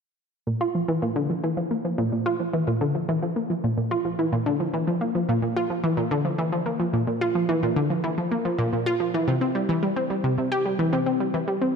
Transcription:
0.47 0.60 A#2 medium
0.61 0.74 F4 medium
0.75 0.84 F3 medium
0.88 1.01 E3 medium
1.02 1.07 A#2 medium
1.16 1.29 D3 medium
1.30 1.39 F3 medium
1.44 1.52 E3 medium
1.57 1.66 F3 medium
1.71 1.84 A#3 medium
1.85 1.98 F3 medium
1.98 2.07 A#2 medium
2.12 2.25 A#2 medium
2.26 2.39 F4 medium
2.40 2.49 F3 medium
2.53 2.67 E3 medium
2.67 2.73 A#2 medium
2.81 2.94 D3 medium
2.95 3.04 F3 medium
3.09 3.18 E3 medium
3.22 3.31 F3 medium
3.36 3.49 A#3 medium
3.50 3.63 F3 medium
3.64 3.73 A#2 medium
3.78 3.91 A#2 medium
3.91 4.04 F4 medium
4.05 4.14 F3 medium
4.19 4.32 E3 medium
4.33 4.38 A#2 medium
4.46 4.59 D3 medium
4.60 4.69 F3 medium
4.74 4.83 E3 medium
4.87 4.96 F3 medium
5.01 5.14 A#3 medium
5.15 5.28 F3 medium
5.29 5.38 A#2 medium
5.42 5.55 A#2 medium
5.56 5.69 F4 medium
5.70 5.79 F3 medium
5.84 5.97 E3 medium
5.97 6.03 A#2 medium
6.11 6.24 D3 medium
6.25 6.34 F3 medium
6.38 6.48 E3 medium
6.52 6.61 F3 medium
6.66 6.79 A#3 medium
6.80 6.93 F3 medium
6.93 7.02 A#2 medium
7.07 7.21 A#2 medium
7.21 7.34 F4 medium
7.35 7.44 F3 medium
7.49 7.62 E3 medium
7.63 7.68 A#2 medium
7.76 7.89 D3 medium
7.90 7.99 F3 medium
8.04 8.13 E3 medium
8.18 8.27 F3 medium
8.31 8.45 A#3 medium
8.45 8.58 F3 medium
8.59 8.68 A#2 medium
8.73 8.86 A#2 medium
8.86 8.99 F4 medium
9.00 9.09 F3 medium
9.14 9.27 E3 medium
9.28 9.33 C3 medium
9.41 9.47 C4 medium
9.55 9.64 G3 medium
9.69 9.78 E3 medium
9.83 9.92 G3 medium
9.96 10.10 C4 medium
10.10 10.23 G3 medium
10.24 10.33 C3 medium
10.38 10.51 C3 medium
10.52 10.65 G4 medium
10.66 10.74 G3 medium
10.79 10.92 E3 medium
10.93 10.98 C3 medium
11.06 11.12 C4 medium
11.20 11.29 G3 medium
11.34 11.43 E3 medium
11.48 11.57 G3 medium
11.62 11.75 C4 medium

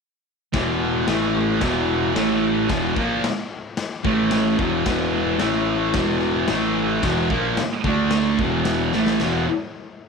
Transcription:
0.53 1.04 E1 loud
0.53 1.07 E2 loud
0.53 1.07 B2 loud
0.53 1.06 E3 loud
0.53 kick loud
0.53 snare loud
0.53 crash medium
1.07 1.57 A1 loud
1.07 1.60 A2 medium
1.07 1.61 E3 loud
1.07 1.61 A3 loud
1.07 snare loud
1.07 crash medium
1.60 2.12 E1 medium
1.60 2.14 E2 loud
1.60 2.14 B2 loud
1.60 2.14 E3 loud
1.60 kick loud
1.60 snare loud
1.60 crash medium
2.14 2.66 A1 medium
2.14 2.68 A2 loud
2.14 2.69 E3 loud
2.14 2.69 A3 loud
2.14 snare loud
2.14 crash medium
2.69 2.95 E1 medium
2.69 2.95 E2 loud
2.69 2.95 B2 loud
2.69 2.96 E3 loud
2.69 kick loud
2.69 snare loud
2.69 crash medium
2.96 3.21 A#1 medium
2.96 3.22 A#2 medium
2.96 3.23 F3 medium
2.96 3.23 A#3 medium
2.96 kick loud
3.24 snare loud
3.24 crash medium
3.77 snare loud
3.77 crash medium
4.04 4.55 A1 loud
4.04 4.57 A2 medium
4.04 4.58 E3 loud
4.04 4.58 A3 loud
4.04 kick loud
4.31 snare loud
4.31 crash medium
4.58 4.84 E1 medium
4.58 4.83 E2 loud
4.58 4.85 B2 loud
4.58 4.85 E3 loud
4.58 kick loud
4.85 5.36 E1 medium
4.85 5.39 E2 loud
4.85 5.38 B2 loud
4.85 5.39 E3 loud
4.85 kick loud
4.85 snare loud
4.85 crash medium
5.38 5.91 A1 loud
5.38 5.93 A2 loud
5.38 5.93 E3 loud
5.38 5.94 A3 loud
5.38 snare loud
5.38 crash medium
5.93 6.45 E1 loud
5.93 6.48 E2 medium
5.93 6.48 B2 loud
5.93 6.48 E3 loud
5.93 kick loud
5.93 snare loud
5.93 crash medium
6.47 7.00 A1 medium
6.47 7.02 A2 medium
6.47 7.02 E3 loud
6.47 7.03 A3 loud
6.47 snare loud
6.47 crash medium
7.03 7.29 E1 loud
7.03 7.29 E2 loud
7.03 7.30 B2 loud
7.03 7.30 E3 loud
7.03 kick loud
7.03 snare loud
7.03 crash medium
7.30 7.56 A#1 medium
7.30 7.57 A#2 medium
7.30 7.57 F3 loud
7.30 7.57 A#3 medium
7.30 kick loud
7.57 snare loud
7.57 crash medium
7.84 8.35 D2 medium
7.84 8.38 D3 medium
7.84 8.39 A3 medium
7.84 8.39 D4 medium
7.84 kick loud
8.10 snare loud
8.10 crash medium
8.39 8.90 E1 loud
8.39 8.93 E2 medium
8.39 8.93 B2 loud
8.39 8.93 E3 loud
8.39 kick loud
8.65 snare loud
8.65 crash medium
8.93 9.20 A1 loud
8.93 9.20 A2 medium
8.93 9.21 E3 medium
8.93 9.21 A3 medium
8.93 snare medium
9.06 snare medium
9.20 9.46 E1 medium
9.20 9.43 E2 loud
9.20 9.44 B2 loud
9.20 9.44 E3 loud
9.20 snare loud
9.20 crash medium

